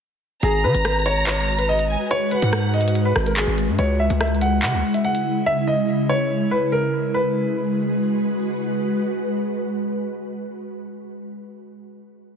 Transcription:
0.43 808-style bass G#1, ambient pad G#3 F#4 B4, grand piano G#4, violin section A#5, closed hi-hat
0.64 808-style bass D#3, grand piano B4
0.74 808-style bass G#1, closed hi-hat
0.85 grand piano B4, cross-stick, closed hi-hat
0.92 closed hi-hat
0.99 closed hi-hat
1.06 grand piano C#5, closed hi-hat
1.27 grand piano C#5, clap, closed hi-hat
1.58 grand piano B4, closed hi-hat
1.69 grand piano D#5
1.79 closed hi-hat
1.90 violin section G#5
2.11 grand piano C#5, closed hi-hat
2.31 grand piano B4, violin section F#5, closed hi-hat
2.42 808-style bass G#2, closed hi-hat
2.53 cross-stick
2.74 grand piano D#5, closed hi-hat
2.81 closed hi-hat
2.88 closed hi-hat
2.95 closed hi-hat
3.05 grand piano B4
3.16 808-style bass G#1, cross-stick
3.26 grand piano A#4, closed hi-hat
3.37 grand piano G#4, clap
3.47 808-style bass G#1
3.58 closed hi-hat
3.68 808-style bass G#2
3.79 808-style bass C#2, ambient pad C#3 E4, grand piano C#5, closed hi-hat
4.00 grand piano E5
4.10 808-style bass C#2, closed hi-hat
4.21 grand piano E5, cross-stick, closed hi-hat
4.28 closed hi-hat
4.35 closed hi-hat
4.41 grand piano F#5, closed hi-hat
4.63 808-style bass C#3, grand piano F#5, clap, closed hi-hat
4.73 808-style bass C#2
4.94 grand piano E5, closed hi-hat
5.05 grand piano F#5
5.15 closed hi-hat
5.46 grand piano E5
5.67 grand piano D#5
6.09 grand piano C#5
6.51 grand piano B4
6.72 grand piano A#4
7.14 ambient pad G#3 F#4 B4, grand piano B4

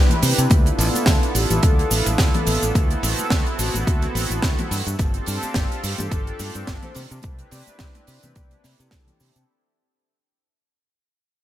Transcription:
Already playing: analog synth pad C4 D4 E4 G4 B4
0.10 closed hi-hat, high conga, low conga
0.22 fingered electric bass C3, open hi-hat, cabasa
0.38 fingered electric bass C3, closed hi-hat, cabasa
0.50 fingered electric bass D2, analog synth pad B3 D4 E4 F4 A4, kick, closed hi-hat, high conga, cabasa
0.66 closed hi-hat, muted conga
0.78 fingered electric bass A1, open hi-hat, cabasa
0.94 closed hi-hat, high conga, cabasa
1.06 fingered electric bass D2, kick, snare, closed hi-hat, muted conga, cabasa
1.23 closed hi-hat
1.34 fingered electric bass A1, analog synth pad B3 D4 E4 F4 A4, vibraphone G4, open hi-hat, cabasa
1.50 fingered electric bass A1, closed hi-hat, high conga, low conga, cabasa
1.63 fingered electric bass D2, vibraphone A4, kick, closed hi-hat, muted conga, cabasa
1.79 vibraphone A4, closed hi-hat
1.91 fingered electric bass A1, open hi-hat, high conga, cabasa
2.06 fingered electric bass A1, closed hi-hat, muted conga, cabasa
2.18 fingered electric bass D2, kick, snare, closed hi-hat, cabasa
2.34 vibraphone A4, closed hi-hat, high conga, low conga
2.46 fingered electric bass A1, vibraphone A4, open hi-hat, cabasa
2.62 fingered electric bass A1, closed hi-hat, muted conga, cabasa
2.74 fingered electric bass D2, analog synth pad B3 C4 E4 F#4 A4, kick, closed hi-hat, high conga, cabasa
2.90 closed hi-hat
3.03 fingered electric bass A1, open hi-hat, muted conga, cabasa
3.18 muted fingered electric bass stroke, closed hi-hat, high conga, cabasa
3.30 fingered electric bass D2, kick, snare, closed hi-hat, cabasa
3.46 closed hi-hat
3.58 fingered electric bass A1, analog synth pad B3 C4 E4 F#4 A4, vibraphone F#4, open hi-hat, muted conga, cabasa
3.74 fingered electric bass A1, closed hi-hat, high conga, low conga, cabasa
3.87 fingered electric bass D2, kick, closed hi-hat, cabasa
4.02 closed hi-hat, muted conga
4.15 fingered electric bass A1, open hi-hat, high conga, cabasa
4.30 fingered electric bass A1, closed hi-hat, cabasa
4.42 fingered electric bass D2, kick, snare, closed hi-hat, cabasa
4.59 closed hi-hat, muted conga, high conga, low conga
4.71 fingered electric bass G2, open hi-hat, cabasa
4.86 fingered electric bass G2, closed hi-hat, cabasa
4.98 fingered electric bass G1, analog synth pad C4 D4 F4 G4 A4, kick, closed hi-hat, muted conga, high conga, cabasa
5.14 closed hi-hat
5.26 fingered electric bass G2, open hi-hat, cabasa
5.42 muted fingered electric bass stroke, closed hi-hat, high conga, cabasa
5.54 fingered electric bass G1, kick, snare, closed hi-hat, muted conga, cabasa
5.72 closed hi-hat
5.82 fingered electric bass G2, analog synth pad C4 D4 F4 G4 A4, vibraphone G4, open hi-hat, cabasa
5.98 fingered electric bass G2, closed hi-hat, muted conga, high conga, low conga, cabasa
6.11 fingered electric bass G1, vibraphone A4, kick, closed hi-hat, cabasa
6.27 vibraphone A4, closed hi-hat
6.39 fingered electric bass G2, open hi-hat, high conga, cabasa
6.54 fingered electric bass G2, closed hi-hat, muted conga, cabasa
6.67 fingered electric bass G1, kick, snare, closed hi-hat, cabasa
6.82 vibraphone C5, closed hi-hat, high conga, low conga
6.95 fingered electric bass C3, open hi-hat, muted conga, cabasa
7.10 fingered electric bass C3, closed hi-hat, cabasa
7.22 fingered electric bass C2, analog synth pad C4 D4 E4 G4 B4, kick, closed hi-hat, high conga, cabasa
7.39 closed hi-hat
7.51 fingered electric bass C3, vibraphone D5, open hi-hat, muted conga, cabasa
7.67 vibraphone D5, muted fingered electric bass stroke, closed hi-hat, high conga, cabasa
7.79 fingered electric bass C2, kick, snare, closed hi-hat, cabasa
7.95 vibraphone D5, closed hi-hat, muted conga
8.07 fingered electric bass C3, analog synth pad C4 D4 E4 G4 B4, vibraphone D5, open hi-hat, cabasa
8.23 fingered electric bass C3, closed hi-hat, high conga, low conga, cabasa
8.35 fingered electric bass C2, vibraphone D5, kick, closed hi-hat, cabasa
8.51 vibraphone D5, closed hi-hat, muted conga
8.63 fingered electric bass C3, analog synth pad C4 D4 E4 G4 A4, snare, open hi-hat, high conga, cabasa
8.80 fingered electric bass C3, closed hi-hat, cabasa
8.91 fingered electric bass C2, kick, snare, closed hi-hat, muted conga, cabasa
9.07 closed hi-hat, high conga, low conga
9.20 fingered electric bass C3, open hi-hat, cabasa
9.36 fingered electric bass C3, closed hi-hat, cabasa

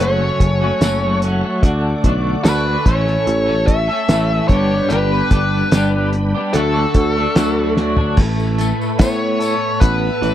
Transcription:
0.00 picked electric bass F#1, clean electric guitar F#2 C#3 F#3 A3 C#4 F#4, tonewheel organ A4 C#5 F#5 C#6, lead electric guitar C#5, closed hi-hat
0.19 clean electric guitar F#3 A3 C#4 F#4
0.40 picked electric bass F#1, kick, closed hi-hat
0.61 clean electric guitar F#3 A3 C#4 F#4
0.81 picked electric bass F#1, clean electric guitar F#2 C#3 F#3 A3 C#4 F#4, snare, closed hi-hat, tambourine
1.02 clean electric guitar F#3 A3 C#4 F#4
1.22 clean electric guitar F#3 A3 C#4 F#4, closed hi-hat
1.43 clean electric guitar F#3 A3 C#4 F#4
1.63 picked electric bass D2, clean electric guitar D3 A3 D4 F#4, tonewheel organ D5 D6, kick, closed hi-hat
2.04 picked electric bass B1, clean electric guitar D3 A3 D4 F#4, kick, closed hi-hat
2.45 picked electric bass D2, clean electric guitar D3 A3 D4 F#4, lead electric guitar B4, snare, closed hi-hat, tambourine
2.65 clean electric guitar A3 D4 F#4
2.85 picked electric bass A1, clean electric guitar A2 E3 A3 C#4 A4, lead electric guitar C#5, tonewheel organ C#5 E5 C#6, kick, closed hi-hat
3.07 clean electric guitar A3 C#4 A4, snare
3.27 picked electric bass A1, closed hi-hat
3.47 clean electric guitar A3 C#4 A4
3.67 lead electric guitar E5, kick, closed hi-hat
3.88 clean electric guitar A3 C#4 A4
4.09 picked electric bass A1, clean electric guitar A2 E3 A3 C#4 A4, snare, closed hi-hat, tambourine
4.29 clean electric guitar A3 C#4 A4
4.48 picked electric bass G1, clean electric guitar G2 D3 G3 B3, tonewheel organ D4 B4 G5 B5, lead electric guitar C#5, kick, closed hi-hat
4.53 clean electric guitar D4 G4
4.71 clean electric guitar G3 B3 D4 G4
4.89 picked electric bass G1, clean electric guitar G2 D3 G3 B3 D4 G4, lead electric guitar B4, closed hi-hat
5.31 picked electric bass G1, clean electric guitar G3 B3 D4 G4, kick, closed hi-hat
5.72 picked electric bass G1, clean electric guitar G2 D3 G3 B3 D4 G4, snare, closed hi-hat, tambourine
5.93 clean electric guitar G3 B3 D4 G4
6.13 muted clean electric guitar stroke, closed hi-hat
6.35 clean electric guitar G3 B3 D4 G4
6.53 picked electric bass D2, clean electric guitar D3 F#3 A3 D4 F#4, tonewheel organ A4 F#5, lead electric guitar A4, closed hi-hat
6.74 clean electric guitar A3 D4 F#4
6.94 picked electric bass D2, kick, closed hi-hat
7.15 clean electric guitar A3 D4 F#4
7.35 picked electric bass D2, clean electric guitar D3 F#3 A3 D4 F#4, snare, closed hi-hat, tambourine
7.56 clean electric guitar A3 D4 F#4
7.76 clean electric guitar F#3 A3 D4 F#4, snare
7.97 clean electric guitar A3 D4 F#4, floor tom
8.17 picked electric bass A1, clean electric guitar A2, tonewheel organ A4 B4 E5 B5, kick, crash
8.40 tambourine
8.58 clean electric guitar A3, closed hi-hat, tambourine
8.81 tambourine
8.99 picked electric bass A2, clean electric guitar B3, lead electric guitar C#5, kick, snare, closed hi-hat, tambourine
9.39 clean electric guitar A4, closed hi-hat, tambourine
9.80 picked electric bass A1, clean electric guitar B3, lead electric guitar B4, kick, closed hi-hat
10.21 picked electric bass A1, clean electric guitar E3, closed hi-hat, tambourine

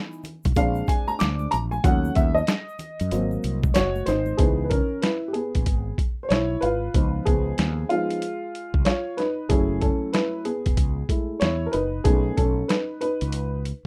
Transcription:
Already playing: upright piano E3 B3 D#4
0.12 shaker
0.24 closed hi-hat, low conga, shaker
0.43 fretless electric bass B1, kick, closed hi-hat, shaker
0.55 fretless electric bass A#1, upright piano G#3 C4 D4 F5, kick, closed hi-hat, shaker
0.75 shaker
0.87 upright piano G#5, kick, closed hi-hat, shaker
1.08 upright piano A#5, high conga, shaker
1.19 fretless electric bass D2, upright piano D6, snare, closed hi-hat, shaker
1.39 high conga, shaker
1.51 fretless electric bass A#1, upright piano A#5, closed hi-hat, low conga, shaker
1.71 upright piano G#5, high conga, shaker
1.84 fretless electric bass D#2, upright piano F#3 A3 C#4 F#5, kick, closed hi-hat, shaker
2.05 shaker
2.15 fretless electric bass D#2, upright piano E5, kick, closed hi-hat, high conga, shaker
2.35 upright piano D#5, shaker
2.47 snare, closed hi-hat, shaker
2.69 shaker
2.79 closed hi-hat, low conga, shaker
3.00 fretless electric bass F#2, closed hi-hat, shaker
3.11 fretless electric bass G#1, upright piano F#3 A#3 C4, closed hi-hat, shaker
3.31 high conga, shaker
3.43 fretless electric bass C2, closed hi-hat, shaker
3.63 kick, high conga, shaker
3.74 fretless electric bass F#1, upright piano F#4 C#5, snare, closed hi-hat, shaker
3.96 high conga, shaker
4.06 fretless electric bass G#1, upright piano D#4 C5, snare, closed hi-hat, low conga, shaker
4.26 high conga, shaker
4.37 fretless electric bass C#2, upright piano E3 B3 D#4 G#4, kick, closed hi-hat
4.64 upright piano B4
4.70 upright piano C#4 A#4, kick, closed hi-hat
5.02 upright piano E4 B4, snare, closed hi-hat
5.28 upright piano G4
5.33 upright piano B3 G#4, closed hi-hat
5.55 fretless electric bass A#1, kick, closed hi-hat
5.66 fretless electric bass G#1, kick, closed hi-hat
5.98 kick, closed hi-hat
6.23 upright piano C5
6.29 fretless electric bass B1, upright piano E4 C#5, snare, closed hi-hat
6.61 fretless electric bass G#1, upright piano F4 B4, closed hi-hat
6.94 fretless electric bass C#2, upright piano F3 B3 D#4, kick, closed hi-hat
7.25 fretless electric bass C#2, upright piano B3 G#4, kick, closed hi-hat
7.58 fretless electric bass D#2, snare, closed hi-hat
7.89 upright piano F3 G#3 B3 D#4 F4, closed hi-hat
8.10 closed hi-hat
8.22 closed hi-hat
8.55 closed hi-hat
8.74 fretless electric bass C#2, kick
8.85 upright piano F4 C#5, snare, closed hi-hat
9.17 upright piano D#4 B4, snare, closed hi-hat
9.49 fretless electric bass F#1, upright piano F#3 A3 C#4 E4 G#4, kick, closed hi-hat
9.81 upright piano C#4 A4, kick, closed hi-hat
10.13 upright piano E4 B4, snare, closed hi-hat
10.45 upright piano B3 G#4, closed hi-hat
10.66 fretless electric bass E1, kick, closed hi-hat
10.77 fretless electric bass C#2, kick, closed hi-hat
11.09 upright piano G#3 A3 E4, kick, closed hi-hat
11.40 fretless electric bass E2, upright piano E4 C#5, snare, closed hi-hat
11.66 upright piano A#4
11.72 fretless electric bass F#1, upright piano D#4 B4, closed hi-hat
12.04 fretless electric bass B1, upright piano A3 B3 C#4 D#4 G#4, kick, closed hi-hat
12.37 fretless electric bass B1, upright piano C#4 A4, kick, closed hi-hat
12.68 upright piano D#4 B4, snare, closed hi-hat
13.01 upright piano D#4 B4, closed hi-hat
13.21 fretless electric bass C#2, closed hi-hat
13.32 closed hi-hat
13.65 closed hi-hat

